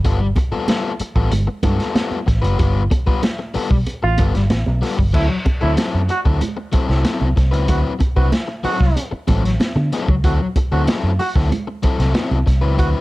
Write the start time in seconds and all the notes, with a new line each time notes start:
0.05 G1 G3 B3 F4 A4, kick, closed hi-hat, muted conga
0.20 muted overdriven electric guitar stroke
0.36 muted overdriven electric guitar stroke, kick, closed hi-hat, muted conga
0.52 G3 B3 F4 A4, muted fingered electric bass stroke
0.68 G3 B3 F4 A4, snare, closed hi-hat, high conga
1.00 muted fingered electric bass stroke, muted overdriven electric guitar stroke, closed hi-hat
1.16 A1 G3 B3 F4 A4, kick
1.31 G1, muted overdriven electric guitar stroke, closed hi-hat, muted conga, low conga
1.47 muted overdriven electric guitar stroke
1.63 G2 G3 B3 F4 A4, kick, closed hi-hat, muted conga, low conga
1.79 G3 B3 F4 A4, snare, closed hi-hat
1.94 G3 B3 F4 A4, snare, closed hi-hat, high conga
2.12 high conga
2.26 A1, muted overdriven electric guitar stroke, kick, snare, closed hi-hat
2.42 F#1 G3 B3 F4 B4, closed hi-hat
2.58 G1 G3 B3 F4 B4, kick, closed hi-hat, muted conga
2.91 muted overdriven electric guitar stroke, kick, closed hi-hat, muted conga
3.07 G3 B3 F4 B4, muted fingered electric bass stroke, kick
3.23 muted overdriven electric guitar stroke, snare, closed hi-hat, high conga
3.39 muted overdriven electric guitar stroke
3.54 G3 B3 F4 A4, muted fingered electric bass stroke, open hi-hat
3.71 B1, muted overdriven electric guitar stroke, kick
3.86 closed hi-hat, muted conga
4.03 A1 F4, muted overdriven electric guitar stroke
4.18 G1 G3 B3 F4 A4, kick, closed hi-hat, muted conga
4.34 G1, muted overdriven electric guitar stroke, snare, closed hi-hat
4.50 A1, muted overdriven electric guitar stroke, snare, closed hi-hat, high conga
4.67 B1, high conga
4.81 G3 B3 F4 A4, snare, open hi-hat
4.98 G1, muted overdriven electric guitar stroke, kick
5.13 D2 F#3 C4 E4 A4, kick, crash
5.29 muted overdriven electric guitar stroke
5.45 muted overdriven electric guitar stroke, kick, closed hi-hat, muted conga
5.61 D2 F#3 C4 E4 A4
5.77 F#3 C4 E4 A4, snare, closed hi-hat, high conga
5.94 F#2
6.09 F#4, muted overdriven electric guitar stroke, closed hi-hat
6.25 D2 F#3 C4 E4 A4, kick
6.41 muted overdriven electric guitar stroke, closed hi-hat, muted conga, low conga
6.57 muted overdriven electric guitar stroke
6.72 F#3 C4 E4 A4, muted fingered electric bass stroke, kick, closed hi-hat, muted conga
6.88 C2 F#3 C4 E4 A4, snare
7.04 F#3 C4 E4 A4, snare, closed hi-hat, high conga
7.21 C2, high conga
7.36 C2, muted overdriven electric guitar stroke, kick, snare, closed hi-hat
7.51 C#2 F#3 C4 E4 B4, closed hi-hat
7.68 D2 F#3 C4 E4 F#4 B4, kick, closed hi-hat, muted conga
7.99 muted overdriven electric guitar stroke, kick, closed hi-hat, muted conga
8.16 C2 F#3 C4 E4 F#4 B4, kick
8.32 muted overdriven electric guitar stroke, snare, closed hi-hat, high conga
8.48 muted overdriven electric guitar stroke
8.64 F#3 C4 E4 F#4 A4, muted fingered electric bass stroke, open hi-hat
8.79 C2, muted overdriven electric guitar stroke, kick, snare
8.96 closed hi-hat, muted conga
9.11 muted overdriven electric guitar stroke, muted fingered electric bass stroke
9.27 A1 F#3 C4 E4 A4, kick, closed hi-hat, muted conga, low conga
9.43 muted overdriven electric guitar stroke, snare, closed hi-hat
9.60 muted overdriven electric guitar stroke, snare, closed hi-hat, high conga
9.76 D3, muted overdriven electric guitar stroke, high conga
9.93 F#3 C4 E4 A4, snare, closed hi-hat
10.08 C#2, muted overdriven electric guitar stroke, kick
10.24 D2 F#3 C4 E4 F#4 A4, kick, closed hi-hat, muted conga
10.40 muted overdriven electric guitar stroke
10.56 muted overdriven electric guitar stroke, kick, closed hi-hat, muted conga
10.72 D2 F#3 C4 E4 F#4 A4
10.87 F#3 C4 E4 A4, snare, closed hi-hat, high conga
11.03 F#2
11.19 F#4, muted overdriven electric guitar stroke, open hi-hat
11.36 D2 F#3 C4 E4 A4, kick, snare
11.51 muted overdriven electric guitar stroke, closed hi-hat, muted conga, low conga
11.67 muted overdriven electric guitar stroke
11.83 F#3 C4 E4 A4, muted fingered electric bass stroke, kick, closed hi-hat, muted conga
11.98 C2 F#3 C4 E4 A4, snare, closed hi-hat
12.13 F#3 C4 E4 A4, snare, closed hi-hat, high conga
12.31 C2, high conga
12.46 C2, muted overdriven electric guitar stroke, kick, snare, closed hi-hat
12.61 C#2 F#3 C4 E4 B4
12.77 D2 F#3 C4 E4 F#4 B4, kick, closed hi-hat